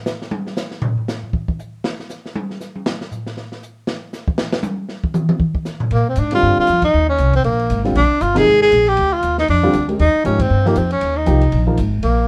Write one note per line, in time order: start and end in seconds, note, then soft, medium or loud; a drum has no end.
0.06 snare medium
0.06 hi-hat pedal soft
0.22 snare soft
0.31 high tom loud
0.47 snare soft
0.57 snare medium
0.57 hi-hat pedal medium
0.71 snare soft
0.82 floor tom loud
0.98 floor tom soft
1.08 snare medium
1.08 hi-hat pedal medium
1.23 floor tom soft
1.33 kick medium
1.48 kick medium
1.59 hi-hat pedal medium
1.84 snare loud
2.00 snare soft
2.10 snare soft
2.10 hi-hat pedal medium
2.26 snare soft
2.35 high tom medium
2.50 snare soft
2.61 snare soft
2.61 hi-hat pedal medium
2.76 high tom soft
2.86 snare loud
3.01 snare medium
3.12 floor tom soft
3.12 hi-hat pedal medium
3.27 snare soft
3.37 snare soft
3.52 snare soft
3.62 hi-hat pedal medium
3.87 snare loud
4.13 snare soft
4.13 hi-hat pedal medium
4.28 kick medium
4.38 snare loud
4.53 snare medium
4.63 hi-hat pedal medium
4.63 high tom loud
4.89 snare soft
5.04 kick medium
5.14 hi-hat pedal medium
5.14 mid tom medium
5.29 mid tom loud
5.40 kick medium
5.55 kick medium
5.65 snare medium
5.65 hi-hat pedal medium
5.80 floor tom medium
5.91 6.16 A#2 medium
5.91 6.06 A#3 medium
5.91 ride medium
6.09 6.21 C4 medium
6.16 6.42 G#2 medium
6.16 6.33 D4 medium
6.16 hi-hat pedal soft
6.16 ride medium
6.31 6.66 D3 medium
6.31 6.66 G3 medium
6.31 6.66 C4 medium
6.31 6.66 F4 medium
6.31 ride medium
6.35 6.57 F4 loud
6.42 6.56 G2 medium
6.58 6.82 F4 loud
6.58 muted upright bass stroke soft
6.67 6.93 F2 medium
6.67 hi-hat pedal medium
6.67 ride medium
6.82 7.07 D#4 medium
6.82 kick medium
6.82 ride medium
6.94 7.18 D#2 medium
7.09 7.33 C#4 medium
7.18 7.43 C2 medium
7.18 hi-hat pedal soft
7.18 ride medium
7.33 7.44 C4 medium
7.33 kick soft
7.33 ride soft
7.44 7.69 A#1 medium
7.44 7.82 A#3 medium
7.44 ride medium
7.59 ride soft
7.70 7.94 G#1 medium
7.70 hi-hat pedal medium
7.70 ride medium
7.84 7.94 D3 medium
7.84 7.94 G3 medium
7.84 7.94 C4 medium
7.84 7.94 F4 medium
7.84 snare soft
7.84 ride soft
7.95 8.09 A#1 medium
7.95 8.23 D4 loud
7.95 ride medium
8.10 muted upright bass stroke soft
8.21 8.45 G1 medium
8.21 8.39 F4 medium
8.21 hi-hat pedal medium
8.21 ride medium
8.35 8.45 C3 medium
8.35 8.45 F3 medium
8.35 8.45 A#3 medium
8.35 8.45 D#4 medium
8.35 8.61 G#4 loud
8.35 snare medium
8.35 ride medium
8.46 8.71 G#1 medium
8.62 8.90 G#4 loud
8.72 8.96 A#1 medium
8.72 hi-hat pedal soft
8.72 ride medium
8.87 9.15 G4 medium
8.87 ride soft
8.97 9.22 D2 medium
8.97 ride medium
9.13 9.38 F4 medium
9.22 9.48 D#2 medium
9.22 hi-hat pedal medium
9.22 ride medium
9.38 9.48 D#4 medium
9.38 snare medium
9.48 9.73 F2 medium
9.48 9.87 D4 medium
9.48 ride medium
9.63 9.72 D3 medium
9.63 9.73 G3 medium
9.63 9.73 C4 medium
9.63 9.73 F4 medium
9.73 9.99 D2 medium
9.73 hi-hat pedal medium
9.73 ride medium
9.88 9.98 G#3 soft
9.88 9.98 C#4 soft
9.88 9.98 G4 soft
9.88 9.98 A#4 medium
9.88 ride soft
9.99 10.13 D#2 medium
9.99 10.24 D#4 medium
9.99 ride medium
10.24 10.50 G#2 medium
10.24 10.38 F3 soft
10.24 10.38 A#3 soft
10.24 10.43 C#4 medium
10.24 10.38 D#4 soft
10.24 10.38 G4 medium
10.24 hi-hat pedal medium
10.24 ride medium
10.39 10.69 C4 medium
10.39 kick medium
10.39 ride medium
10.50 10.75 G2 medium
10.65 10.75 F3 medium
10.65 10.75 A#3 medium
10.65 10.79 A#3 medium
10.65 10.75 D#4 medium
10.65 10.75 G4 medium
10.65 snare soft
10.76 11.01 F2 medium
10.76 10.92 C4 medium
10.76 hi-hat pedal medium
10.76 ride medium
10.91 11.18 C#4 medium
10.91 ride soft
11.01 11.26 D#2 medium
11.01 ride medium
11.17 11.66 D#4 medium
11.26 11.52 C2 medium
11.26 11.40 F3 medium
11.26 11.40 A#3 medium
11.26 11.40 D#4 medium
11.26 11.40 G4 medium
11.26 hi-hat pedal medium
11.26 ride medium
11.41 ride soft
11.52 11.77 A#1 medium
11.52 ride medium
11.67 11.76 F3 medium
11.67 11.77 A#3 medium
11.67 11.77 D#4 medium
11.67 11.77 A#4 medium
11.67 kick soft
11.77 12.03 G#1 medium
11.77 hi-hat pedal medium
11.77 ride medium
12.03 12.28 A#1 medium
12.03 12.28 A#3 medium
12.03 ride medium